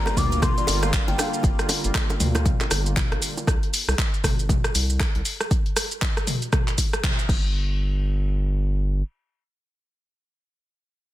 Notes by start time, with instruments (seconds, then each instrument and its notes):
Already playing: analog synth pad D3 G3 A#3 F4, bansuri A#5
0.06 cross-stick, closed hi-hat, high bongo, shaker
0.17 analog synth bass D2, kalimba D4, bansuri D6, kick, open hi-hat, mid tom, low bongo, shaker
0.32 kalimba A#4, closed hi-hat, shaker
0.42 bansuri C6, kick, cross-stick, closed hi-hat, mid tom, low bongo, shaker
0.57 kalimba D5, closed hi-hat, shaker
0.67 analog synth bass G1, kalimba A#4, open hi-hat, high bongo, shaker
0.83 kalimba F5, cross-stick, low bongo, shaker
0.93 kick, clap, closed hi-hat, shaker
1.08 analog synth bass G1, kalimba G5, closed hi-hat, low bongo
1.18 kalimba D4, bansuri F5, cross-stick, open hi-hat, high bongo, shaker
1.34 shaker
1.43 analog synth bass G1, kick, closed hi-hat, low bongo, shaker
1.59 cross-stick, closed hi-hat, shaker
1.69 open hi-hat, high bongo, low bongo, shaker
1.84 analog synth bass G1, closed hi-hat, shaker
1.95 kick, cross-stick, clap, closed hi-hat, shaker
2.10 closed hi-hat, high bongo, low bongo, shaker
2.20 analog synth bass D2, open hi-hat, mid tom, shaker
2.35 cross-stick, closed hi-hat, low bongo, shaker
2.46 kick, closed hi-hat, mid tom, shaker
2.61 clap, closed hi-hat, high bongo, shaker
2.71 analog synth bass G1, cross-stick, open hi-hat, low bongo, shaker
2.86 closed hi-hat, shaker
2.96 kick, clap, closed hi-hat, mid tom, low bongo, shaker
3.12 analog synth bass G1, cross-stick, closed hi-hat
3.22 open hi-hat, shaker
3.37 low bongo, shaker
3.47 analog synth bass C2, kick, cross-stick, closed hi-hat, shaker
3.63 closed hi-hat
3.74 open hi-hat, shaker
3.88 analog synth bass C2, cross-stick, shaker
3.98 kick, clap, closed hi-hat, shaker
4.14 closed hi-hat, shaker
4.24 analog synth bass G1, kick, cross-stick, open hi-hat, mid tom, shaker
4.39 closed hi-hat, shaker
4.49 kick, closed hi-hat, mid tom, shaker
4.64 cross-stick, closed hi-hat, shaker
4.75 analog synth bass C2, open hi-hat, shaker
4.90 shaker
5.00 kick, cross-stick, clap, closed hi-hat, shaker
5.15 analog synth bass C2, closed hi-hat
5.25 open hi-hat, shaker
5.41 cross-stick, shaker
5.51 kick, closed hi-hat, shaker
5.66 closed hi-hat
5.76 cross-stick, open hi-hat, shaker
5.91 closed hi-hat, shaker
6.02 kick, clap, closed hi-hat, shaker
6.17 cross-stick, closed hi-hat, shaker
6.27 open hi-hat, mid tom, shaker
6.42 closed hi-hat, shaker
6.53 kick, cross-stick, closed hi-hat, mid tom, shaker
6.68 clap, closed hi-hat, shaker
6.78 kick, open hi-hat, shaker
6.93 cross-stick, closed hi-hat, shaker
7.04 kick, clap, closed hi-hat, mid tom, shaker
7.19 closed hi-hat, shaker
7.29 analog synth bass G1, kick, crash